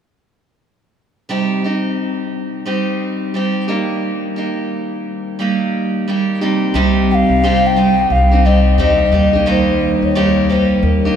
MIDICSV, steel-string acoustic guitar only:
0, 0, Header, 1, 2, 480
1, 0, Start_track
1, 0, Tempo, 682594
1, 903, Time_signature, 4, 2, 24, 8
1, 7849, End_track
2, 0, Start_track
2, 0, Title_t, "Steel-string acoustic guitar"
2, 0, Program_c, 0, 25
2, 906, Note_on_c, 0, 48, 55
2, 908, Note_on_c, 0, 55, 66
2, 914, Note_on_c, 0, 60, 64
2, 916, Note_on_c, 0, 63, 62
2, 919, Note_on_c, 0, 67, 67
2, 1145, Note_off_c, 0, 48, 0
2, 1146, Note_off_c, 0, 55, 0
2, 1146, Note_off_c, 0, 67, 0
2, 1149, Note_off_c, 0, 60, 0
2, 1150, Note_off_c, 0, 63, 0
2, 1155, Note_on_c, 0, 67, 41
2, 1163, Note_on_c, 0, 63, 41
2, 1169, Note_on_c, 0, 60, 33
2, 1864, Note_off_c, 0, 60, 0
2, 1867, Note_on_c, 0, 55, 51
2, 1871, Note_off_c, 0, 63, 0
2, 1872, Note_on_c, 0, 60, 54
2, 1873, Note_on_c, 0, 63, 56
2, 1878, Note_off_c, 0, 67, 0
2, 1880, Note_on_c, 0, 67, 53
2, 2346, Note_off_c, 0, 55, 0
2, 2347, Note_off_c, 0, 60, 0
2, 2349, Note_on_c, 0, 55, 49
2, 2356, Note_on_c, 0, 60, 48
2, 2361, Note_off_c, 0, 63, 0
2, 2363, Note_off_c, 0, 67, 0
2, 2364, Note_on_c, 0, 63, 51
2, 2366, Note_on_c, 0, 67, 57
2, 2578, Note_off_c, 0, 67, 0
2, 2585, Note_off_c, 0, 63, 0
2, 2587, Note_on_c, 0, 67, 57
2, 2588, Note_off_c, 0, 55, 0
2, 2589, Note_off_c, 0, 60, 0
2, 2592, Note_on_c, 0, 58, 51
2, 2593, Note_on_c, 0, 63, 50
2, 2596, Note_on_c, 0, 51, 48
2, 2596, Note_on_c, 0, 55, 45
2, 3064, Note_off_c, 0, 67, 0
2, 3067, Note_on_c, 0, 67, 48
2, 3069, Note_off_c, 0, 58, 0
2, 3076, Note_off_c, 0, 63, 0
2, 3078, Note_on_c, 0, 63, 42
2, 3084, Note_on_c, 0, 58, 36
2, 3786, Note_off_c, 0, 55, 0
2, 3789, Note_on_c, 0, 55, 53
2, 3790, Note_off_c, 0, 58, 0
2, 3799, Note_off_c, 0, 63, 0
2, 3799, Note_on_c, 0, 58, 54
2, 3802, Note_on_c, 0, 63, 61
2, 3807, Note_off_c, 0, 67, 0
2, 3809, Note_on_c, 0, 67, 57
2, 4269, Note_off_c, 0, 58, 0
2, 4270, Note_off_c, 0, 55, 0
2, 4273, Note_on_c, 0, 55, 58
2, 4277, Note_on_c, 0, 58, 52
2, 4279, Note_off_c, 0, 63, 0
2, 4282, Note_on_c, 0, 63, 53
2, 4283, Note_off_c, 0, 67, 0
2, 4286, Note_on_c, 0, 67, 61
2, 4501, Note_off_c, 0, 67, 0
2, 4505, Note_off_c, 0, 63, 0
2, 4510, Note_off_c, 0, 55, 0
2, 4510, Note_on_c, 0, 67, 61
2, 4512, Note_off_c, 0, 58, 0
2, 4514, Note_on_c, 0, 63, 51
2, 4516, Note_on_c, 0, 60, 44
2, 4520, Note_off_c, 0, 51, 0
2, 4521, Note_on_c, 0, 55, 50
2, 4522, Note_on_c, 0, 48, 44
2, 4731, Note_off_c, 0, 48, 0
2, 4739, Note_off_c, 0, 55, 0
2, 4740, Note_on_c, 0, 48, 74
2, 4741, Note_off_c, 0, 60, 0
2, 4741, Note_off_c, 0, 63, 0
2, 4746, Note_off_c, 0, 67, 0
2, 4747, Note_on_c, 0, 55, 73
2, 4750, Note_on_c, 0, 60, 81
2, 4750, Note_on_c, 0, 63, 81
2, 4755, Note_on_c, 0, 67, 81
2, 5221, Note_off_c, 0, 48, 0
2, 5226, Note_off_c, 0, 60, 0
2, 5229, Note_on_c, 0, 48, 66
2, 5230, Note_off_c, 0, 55, 0
2, 5233, Note_on_c, 0, 55, 60
2, 5234, Note_off_c, 0, 63, 0
2, 5234, Note_on_c, 0, 60, 66
2, 5237, Note_off_c, 0, 67, 0
2, 5237, Note_on_c, 0, 63, 70
2, 5239, Note_on_c, 0, 67, 75
2, 5451, Note_off_c, 0, 55, 0
2, 5456, Note_off_c, 0, 60, 0
2, 5460, Note_on_c, 0, 55, 51
2, 5463, Note_off_c, 0, 63, 0
2, 5464, Note_on_c, 0, 60, 55
2, 5467, Note_off_c, 0, 67, 0
2, 5468, Note_off_c, 0, 48, 0
2, 5472, Note_on_c, 0, 63, 53
2, 5476, Note_on_c, 0, 67, 51
2, 5837, Note_off_c, 0, 67, 0
2, 5845, Note_off_c, 0, 63, 0
2, 5846, Note_off_c, 0, 55, 0
2, 5846, Note_on_c, 0, 67, 45
2, 5849, Note_off_c, 0, 60, 0
2, 5854, Note_on_c, 0, 63, 42
2, 5859, Note_on_c, 0, 60, 37
2, 5939, Note_off_c, 0, 60, 0
2, 5939, Note_off_c, 0, 63, 0
2, 5941, Note_on_c, 0, 55, 45
2, 5944, Note_off_c, 0, 67, 0
2, 5948, Note_on_c, 0, 60, 56
2, 5948, Note_on_c, 0, 63, 53
2, 5953, Note_on_c, 0, 67, 59
2, 6172, Note_off_c, 0, 55, 0
2, 6174, Note_on_c, 0, 48, 63
2, 6176, Note_off_c, 0, 63, 0
2, 6177, Note_off_c, 0, 60, 0
2, 6181, Note_off_c, 0, 67, 0
2, 6181, Note_on_c, 0, 55, 63
2, 6185, Note_on_c, 0, 60, 68
2, 6185, Note_on_c, 0, 63, 67
2, 6189, Note_on_c, 0, 67, 66
2, 6403, Note_off_c, 0, 55, 0
2, 6412, Note_on_c, 0, 55, 50
2, 6414, Note_off_c, 0, 60, 0
2, 6416, Note_off_c, 0, 63, 0
2, 6416, Note_on_c, 0, 58, 52
2, 6419, Note_off_c, 0, 48, 0
2, 6420, Note_off_c, 0, 67, 0
2, 6425, Note_on_c, 0, 63, 53
2, 6428, Note_on_c, 0, 67, 51
2, 6553, Note_off_c, 0, 67, 0
2, 6561, Note_on_c, 0, 67, 43
2, 6562, Note_off_c, 0, 55, 0
2, 6565, Note_off_c, 0, 58, 0
2, 6567, Note_off_c, 0, 63, 0
2, 6575, Note_on_c, 0, 63, 39
2, 6579, Note_on_c, 0, 58, 34
2, 6652, Note_off_c, 0, 58, 0
2, 6652, Note_off_c, 0, 63, 0
2, 6652, Note_on_c, 0, 51, 65
2, 6657, Note_off_c, 0, 67, 0
2, 6657, Note_on_c, 0, 55, 68
2, 6660, Note_on_c, 0, 58, 65
2, 6660, Note_on_c, 0, 63, 73
2, 6665, Note_on_c, 0, 67, 64
2, 7132, Note_off_c, 0, 55, 0
2, 7135, Note_off_c, 0, 58, 0
2, 7137, Note_off_c, 0, 51, 0
2, 7139, Note_off_c, 0, 67, 0
2, 7140, Note_on_c, 0, 51, 66
2, 7141, Note_on_c, 0, 55, 65
2, 7143, Note_on_c, 0, 58, 69
2, 7147, Note_off_c, 0, 63, 0
2, 7148, Note_on_c, 0, 67, 70
2, 7150, Note_on_c, 0, 63, 74
2, 7371, Note_off_c, 0, 55, 0
2, 7378, Note_off_c, 0, 58, 0
2, 7379, Note_on_c, 0, 55, 48
2, 7381, Note_off_c, 0, 63, 0
2, 7382, Note_off_c, 0, 51, 0
2, 7386, Note_off_c, 0, 67, 0
2, 7386, Note_on_c, 0, 58, 55
2, 7390, Note_on_c, 0, 63, 51
2, 7397, Note_on_c, 0, 67, 54
2, 7763, Note_off_c, 0, 67, 0
2, 7765, Note_off_c, 0, 55, 0
2, 7769, Note_off_c, 0, 58, 0
2, 7770, Note_off_c, 0, 63, 0
2, 7771, Note_on_c, 0, 67, 48
2, 7778, Note_on_c, 0, 63, 46
2, 7784, Note_on_c, 0, 58, 40
2, 7849, Note_off_c, 0, 58, 0
2, 7849, Note_off_c, 0, 63, 0
2, 7849, Note_off_c, 0, 67, 0
2, 7849, End_track
0, 0, End_of_file